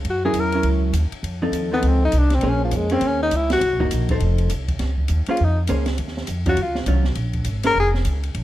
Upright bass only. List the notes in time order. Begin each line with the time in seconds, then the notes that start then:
0.05 F#2
0.33 E2
0.63 C#2
0.93 D#2
1.12 muted upright bass stroke
1.23 F2
1.52 D#2
1.83 C#2
2.13 C2
2.43 A#1
2.72 F2
3.01 D#2
3.31 C#2
3.61 C2
3.73 A#1
3.83 F#1
3.92 A#1
4.20 F1
4.50 C2
4.80 C#2
5.09 D#2
5.28 muted upright bass stroke
5.40 F2
5.70 C#2
5.99 D#2
6.28 F2
6.57 C#2
6.86 C2
7.16 A#1
7.45 G#1
7.75 F1
8.05 C#2
8.35 A#1